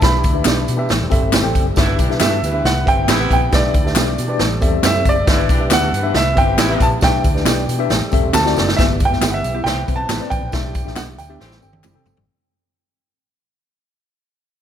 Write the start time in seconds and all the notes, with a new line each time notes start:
0.01 B1 E3 D4 G4 B4 E5 B5, kick, snare, closed hi-hat, tambourine
0.24 D2, kick, closed hi-hat, tambourine
0.33 D4 G4 B4 E5
0.45 B1 B3 D4 G4, snare, clap, closed hi-hat, tambourine
0.68 B2, closed hi-hat, tambourine
0.77 D4 G4 B4 E5
0.89 A1 G3 C4 A4, snare, closed hi-hat, tambourine
1.01 E1
1.10 F#1 C4 G4 A4 E5, kick, closed hi-hat, tambourine
1.22 G1
1.32 C4 E4 G4, snare, clap, closed hi-hat, tambourine
1.42 A1 C4 G4 A4 G5
1.55 F#1, kick, closed hi-hat, tambourine
1.76 G1 B2 E3 G3 B3 D4 E4 G4 B4 E5, kick, snare, closed hi-hat, tambourine
1.98 B1 E3 D4 G4, kick, closed hi-hat, tambourine
2.10 D4 G4 B4 E5, snare
2.20 G2 A3 B3 E4 F#4 G4 A4 E5, snare, clap, closed hi-hat, tambourine
2.42 D2 G3 E4 B4, closed hi-hat, tambourine
2.53 D4 G4 B4 E5
2.64 C2 F#5, snare, closed hi-hat
2.68 C3
2.85 G1 E3 C4 G4 B4 E5 G5, kick, closed hi-hat
3.08 A1 C3 B3 E4 G4, snare, clap, closed hi-hat, tambourine
3.19 C4 G4 B4 F#5
3.31 A#1 G5, kick, closed hi-hat, tambourine
3.52 B1 E3 D4 G4 B4 D5 E5, kick, snare, closed hi-hat, tambourine
3.74 D2, kick, closed hi-hat, tambourine
3.84 D4 G4 B4 E5, snare
3.95 B1 B3 D4 G4, snare, clap, closed hi-hat, tambourine
4.18 B2, closed hi-hat, tambourine
4.28 D4 G4 B4 D5
4.39 A1 G3 C4 A4, snare, closed hi-hat
4.60 E2 C4 G4 A4 E5, kick, closed hi-hat, tambourine
4.83 F#2 C4 E4 G4 E5, snare, clap, closed hi-hat, tambourine
4.93 C4 G4 A4 E5
5.05 F#1 D5, kick, closed hi-hat, tambourine
5.26 G1 B2 E3 G3 B3 D4 E4 G4 B4 E5, kick, snare, closed hi-hat, tambourine
5.49 B1 E3 D4 G4, kick, closed hi-hat, tambourine
5.58 D4 G4 B4 E5
5.70 D2 A3 B3 E4 F#4 G4 A4 F#5, snare, clap, closed hi-hat, tambourine
5.92 G2 G3 E4 B4, closed hi-hat, tambourine
6.02 D4 G4 B4 E5
6.14 C2 C3 B3 E4 E5, snare, closed hi-hat
6.34 G1 E3 C4 G4 B4 E5 G5, kick, closed hi-hat, tambourine
6.57 A1 C3 B3 E4 G4, snare, clap, closed hi-hat, tambourine
6.68 C4 G4 B4 E5
6.80 A#1 A5, kick, closed hi-hat, tambourine
7.01 B1 E3 D4 G4 B4 E5 G5, kick, snare, closed hi-hat, tambourine
7.24 D2, kick, closed hi-hat, tambourine
7.34 D4 G4 B4 D5, snare
7.45 B1 B3 D4 G4, snare, clap, closed hi-hat, tambourine
7.68 B2, closed hi-hat, tambourine
7.79 D4 G4 B4 E5
7.89 A1 G3 C4 A4, snare, closed hi-hat, tambourine
8.02 muted fingered electric bass stroke
8.12 E1 C4 G4 A4 E5, kick, closed hi-hat, tambourine
8.33 D2 D3 C4 F#4 A4 A5, snare, clap, tambourine
8.45 C4 F#4 A4 D5, snare
8.56 F#1, snare, tambourine
8.68 snare
8.77 G1 E3 B3 G4 E5, kick, snare, closed hi-hat, tambourine
9.00 kick, closed hi-hat, tambourine
9.05 G5
9.10 F#1 B3 G4 E5, snare
9.21 G1 B3 E4 G4, snare, clap, closed hi-hat, tambourine
9.31 E5 F#5
9.43 B1, closed hi-hat, tambourine
9.54 B3 E4 G4 E5
9.64 C2 E3 C4 G4 B4 G5, snare, closed hi-hat, tambourine
9.87 B1 C4 B4 E5, kick, closed hi-hat, tambourine
9.96 A5
10.09 A1 B3 E4 G4, snare, clap, closed hi-hat, tambourine
10.20 C4 B4 D5
10.30 A1 G5, kick, closed hi-hat, tambourine
10.43 A#1
10.52 B1 E3 D4 G4 E5, kick, snare, closed hi-hat, tambourine
10.75 kick, closed hi-hat, tambourine
10.85 A1 D4 G4 E5, snare
10.96 B1 B3 D4 G4 F#5, snare, clap, closed hi-hat, tambourine
11.18 D2 G5, closed hi-hat, tambourine
11.29 B3 D4 G4 E5
11.40 A1 E3 G3 C4 G4 A4, snare, tambourine
11.51 snare
11.61 G1 C4 A4 G5, tambourine
11.73 high tom
11.84 F#1 C4 E4 G4, clap, mid tom, tambourine
11.94 C4 A4 G5
12.06 G1, floor tom, tambourine
12.17 G#1, floor tom